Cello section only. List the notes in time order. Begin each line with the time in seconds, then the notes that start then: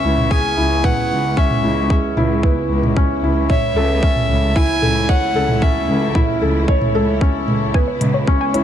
0.04 C#2
0.58 C#2
1.11 C#2
1.64 C#2
2.17 C#2
2.70 C#2
3.23 C#2
3.76 C#2
4.29 C#2
4.82 C#2
5.36 C#2
5.89 C#2
6.42 C#2
6.94 C#2
7.48 C#2
8.01 C#2
8.54 C#2